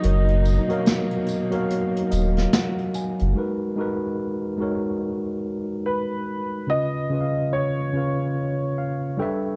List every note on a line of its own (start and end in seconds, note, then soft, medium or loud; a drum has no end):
0.00 3.33 B2 medium
0.00 0.50 F#3 medium
0.00 3.33 A#3 medium
0.00 3.33 D#4 medium
0.00 0.51 F#4 medium
0.00 0.52 A#4 medium
0.00 2.49 D#5 loud
0.00 closed hi-hat medium
0.04 0.59 F#1 loud
0.04 0.52 C#5 medium
0.04 0.53 D#5 medium
0.28 closed hi-hat soft
0.45 closed hi-hat soft
0.45 tambourine medium
0.68 1.27 F#3 medium
0.68 1.28 F#4 medium
0.68 1.29 A#4 medium
0.68 1.29 C#5 medium
0.68 closed hi-hat soft
0.73 1.30 F5 medium
0.86 snare loud
0.86 closed hi-hat medium
1.11 closed hi-hat soft
1.26 closed hi-hat medium
1.26 tambourine medium
1.50 2.77 F#3 loud
1.50 2.78 F#4 medium
1.50 2.78 A#4 medium
1.50 2.79 C#5 medium
1.50 closed hi-hat soft
1.55 2.36 F5 loud
1.70 closed hi-hat medium
1.96 closed hi-hat soft
2.11 2.46 D#1 medium
2.11 2.35 D#5 medium
2.11 closed hi-hat medium
2.11 tambourine medium
2.37 2.52 F5 medium
2.37 snare soft
2.37 closed hi-hat medium
2.52 2.92 F#5 medium
2.52 snare loud
2.52 closed hi-hat medium
2.78 closed hi-hat soft
2.94 3.34 G#5 medium
2.94 closed hi-hat medium
2.94 tambourine medium
3.19 3.34 F#1 medium
3.19 closed hi-hat soft
3.33 3.69 G#3 medium
3.33 3.69 D#4 medium
3.33 3.70 F#4 medium
3.37 3.71 A#4 medium
3.37 3.71 B4 medium
3.76 4.44 G#3 medium
3.76 4.45 D#4 medium
3.76 4.45 F#4 medium
3.76 4.46 A#4 medium
3.81 4.47 B4 medium
4.58 5.85 G#3 medium
4.58 5.86 D#4 medium
4.58 5.87 F#4 medium
4.58 5.87 A#4 medium
4.63 5.88 C#5 medium
5.86 6.66 B4 medium
6.67 7.02 C#3 medium
6.67 7.03 C#4 medium
6.67 7.03 F4 medium
6.67 7.04 B4 medium
6.67 7.56 D#5 loud
6.72 7.04 D#5 medium
7.09 7.78 C#3 medium
7.09 7.78 C#4 medium
7.09 7.79 F4 medium
7.09 7.79 B4 medium
7.14 7.21 D#5 medium
7.21 7.83 F5 medium
7.53 9.56 C#5 medium
7.93 9.19 C#3 medium
7.93 9.19 C#4 medium
7.93 9.20 F4 medium
7.93 9.20 B4 medium
7.97 8.77 F5 medium
8.78 9.17 F5 medium
9.17 9.56 G3 medium
9.17 9.56 D4 medium
9.17 9.56 A4 medium
9.17 9.56 B4 medium
9.17 9.56 G5 medium
9.22 9.56 E5 loud